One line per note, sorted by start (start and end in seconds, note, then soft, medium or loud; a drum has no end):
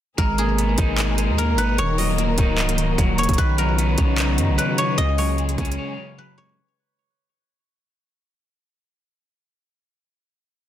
0.18 0.76 G#1 loud
0.18 1.77 B2 medium
0.18 3.35 D#3 medium
0.18 1.17 G#3 medium
0.18 1.77 G#4 medium
0.18 1.38 A#4 loud
0.18 3.35 A#4 medium
0.18 kick loud
0.18 closed hi-hat medium
0.38 1.38 A#3 medium
0.38 2.66 G#4 medium
0.38 closed hi-hat medium
0.58 1.57 B3 medium
0.58 closed hi-hat medium
0.78 1.30 G#1 loud
0.78 1.78 D#4 loud
0.78 kick loud
0.78 closed hi-hat medium
0.98 1.78 G#4 medium
0.98 clap loud
0.98 closed hi-hat medium
1.18 1.78 G#3 medium
1.18 closed hi-hat medium
1.29 1.55 D#2 medium
1.38 1.78 A#3 medium
1.38 1.64 A#4 medium
1.38 closed hi-hat medium
1.54 1.77 G#1 loud
1.58 1.78 B3 medium
1.58 3.38 B4 medium
1.58 closed hi-hat medium
1.78 2.36 D#1 loud
1.78 2.77 D#3 medium
1.78 3.37 A#3 medium
1.78 6.54 F#4 medium
1.78 3.18 C#5 loud
1.78 closed hi-hat medium
1.98 2.97 F#3 medium
1.98 3.77 D#5 medium
1.98 open hi-hat medium
2.18 3.17 A#3 medium
2.18 closed hi-hat medium
2.38 2.96 C#1 loud
2.38 3.38 D#4 loud
2.38 kick medium
2.38 closed hi-hat medium
2.58 3.38 D#5 medium
2.58 clap loud
2.58 closed hi-hat soft
2.69 closed hi-hat medium
2.78 3.37 D#3 medium
2.78 closed hi-hat medium
2.98 3.28 D#1 loud
2.98 3.38 F#3 medium
2.98 kick medium
2.98 closed hi-hat medium
3.18 3.38 A#3 medium
3.18 4.78 C#5 medium
3.18 closed hi-hat medium
3.23 closed hi-hat medium
3.29 3.38 D#1 loud
3.29 kick loud
3.29 closed hi-hat medium
3.34 closed hi-hat medium
3.38 3.96 B1 loud
3.38 6.55 C#3 medium
3.38 4.37 D#3 medium
3.38 4.97 B3 medium
3.38 4.97 D#4 medium
3.38 3.64 B4 loud
3.38 kick loud
3.38 closed hi-hat medium
3.58 4.57 F#3 medium
3.58 4.64 A#4 medium
3.58 closed hi-hat medium
3.78 4.77 B3 medium
3.78 closed hi-hat medium
3.98 4.40 B1 loud
3.98 4.98 C#4 loud
3.98 kick loud
3.98 closed hi-hat medium
4.18 4.98 D#4 medium
4.18 clap loud
4.18 closed hi-hat medium
4.38 4.50 F#2 loud
4.38 4.98 D#3 medium
4.38 closed hi-hat medium
4.49 4.58 B1 loud
4.58 4.98 F#3 medium
4.58 6.18 B4 medium
4.58 closed hi-hat medium
4.78 4.98 B3 medium
4.78 5.18 C#5 medium
4.78 closed hi-hat medium
4.98 5.56 C#2 loud
4.98 5.97 C#3 loud
4.98 6.57 G#3 medium
4.98 6.57 G#4 medium
4.98 6.76 D#5 loud
4.98 closed hi-hat medium
5.18 6.17 F#3 medium
5.18 6.37 C#5 medium
5.18 open hi-hat medium
5.38 6.37 G#3 medium
5.38 closed hi-hat soft
5.49 closed hi-hat medium
5.58 5.77 C#2 loud
5.58 6.59 C#4 loud
5.58 kick medium
5.58 closed hi-hat soft
5.65 closed hi-hat medium
5.72 closed hi-hat medium
5.78 6.58 C#5 medium
5.98 6.58 C#3 medium
6.18 6.58 F#3 medium
6.18 8.23 B4 medium
6.38 6.58 G#3 medium
6.38 8.29 C#5 medium